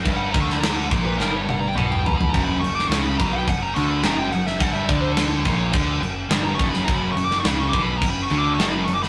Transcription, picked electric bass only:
\new Staff \with { instrumentName = "Picked electric bass" } { \clef bass \time 4/4 \tempo 4 = 105 g,,8 d,4 ais,,8 g,,4 b,,4 | fis,,8 fis,,8 cis,8 b,,8 fis,,8 d,8 fis,,8 fis,,8 | g,,8 d,4 ais,,8 d,8 fis,,8 g,,8 fis,,8 | fis,,8 fis,,8 cis,8 b,,8 fis,,8 d,8 fis,,8 fis,,8 | }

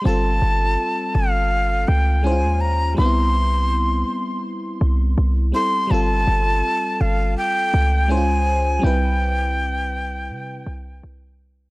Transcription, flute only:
\new Staff \with { instrumentName = "Flute" } { \time 4/4 \key c \major \tempo 4 = 82 a''4. f''4 g''8 aes''8 bes''8 | c'''2 r4. c'''8 | a''4. f''8 g''4 aes''4 | g''2. r4 | }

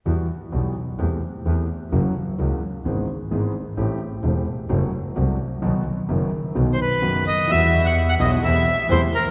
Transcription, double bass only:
\new Staff \with { instrumentName = "Double bass" } { \clef bass \time 4/4 \key e \minor \tempo 4 = 129 e,8 r8 b,,8 r8 e,8 r8 e,8 r8 | fis,,8 r8 cis,8 r8 gis,,8 r8 gis,,8 r8 | a,,8 r8 e,,8 r8 fis,,8 r8 c,8 r8 | b,,8 r8 fis,,8 r8 b,,8 r4. |
e,4. b,,8 e,8 r8 e,8 r8 | }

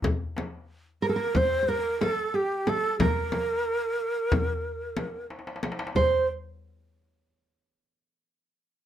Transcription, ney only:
\new Staff \with { instrumentName = "Ney" } { \time 9/8 \tempo 4. = 61 r4. bes'8 c''8 bes'8 a'8 g'8 a'8 | bes'2.~ bes'8 r4 | c''8 r1 | }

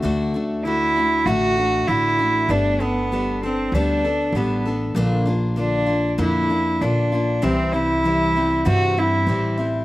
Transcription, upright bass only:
\new Staff \with { instrumentName = "Upright bass" } { \clef bass \time 4/4 \key d \mixolydian \tempo 4 = 97 d,2 a,,4 a,,4 | g,,2 d,4 a,,4 | bes,,2 f,4 bes,,4 | c,2 g,4 a,,4 | }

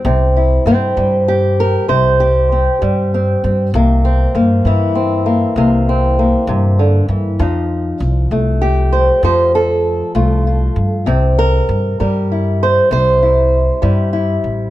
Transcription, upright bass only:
\new Staff \with { instrumentName = "Upright bass" } { \clef bass \time 12/8 \key c \mixolydian \tempo 4. = 65 c,4 g,8 g,4. c,4. g,4 g,8 | c,4 g,8 g,4. c,4. g,4 g,8 | f,4 c,8 c,4. f,4. c,4 g,8 | c,4 g,8 g,4. c,4. g,4 a,,8 | }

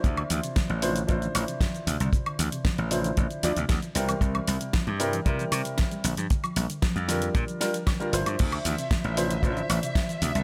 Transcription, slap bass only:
\new Staff \with { instrumentName = "Slap bass" } { \clef bass \time 4/4 \key d \minor \tempo 4 = 115 d,16 r16 d,16 r8 a,,8 r16 a,,16 r16 a,,16 r8. d,16 c,16 | r8 d,16 r8 a,,8 r16 a,,16 r16 d,16 d,16 d,16 r16 c,16 r16 | c,16 r16 c,16 r8 g,8 r16 c16 r16 c16 r8. bes,,16 g,16 | r8 bes,,16 r8 f,8 r16 bes,16 r4 r16 g,,16 g,16 |
d,16 r16 d,16 r8 a,,8 r16 a,,16 r16 a,,16 r8. d,16 c,16 | }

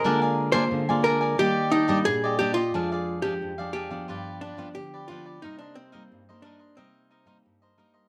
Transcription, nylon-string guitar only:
\new Staff \with { instrumentName = "Nylon-string guitar" } { \clef bass \time 4/4 \key c \minor \tempo 4 = 89 << { <aes bes f'>8. <aes bes f'>8 <aes bes f'>8. <g bes>8. <g bes d'>8. <g bes d'>16 r16 | <f aes d'>8. <f aes d'>8 <f aes d'>8 <f b d'>4 <f b d'>8. <f b d'>8 | <g bes ees'>8. <g bes ees'>8 <g bes ees'>8. <g bes ees'>8. <g bes ees'>8. <g bes ees'>8 | } \\ { d4 d4 ees4 bes,4 | f,4 f,4 g,4 d4 | c4 g,4 c4 g,4 | } >> }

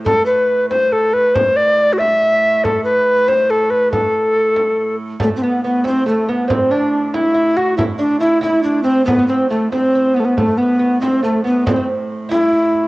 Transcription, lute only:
\new Staff \with { instrumentName = "Lute" } { \time 6/8 \key a \dorian \tempo 4. = 93 r2. | r2. | r2. | r2. |
a8 b8 b8 c'8 a8 b8 | c'8 d'4 e'8 e'8 fis'8 | e'8 d'8 e'8 e'4 c'8 | b32 b32 b16 c'8 a8 c'8 c'8 b8 |
a8 b8 b8 c'8 a8 b8 | c'32 c'32 c'16 r4 e'4. | }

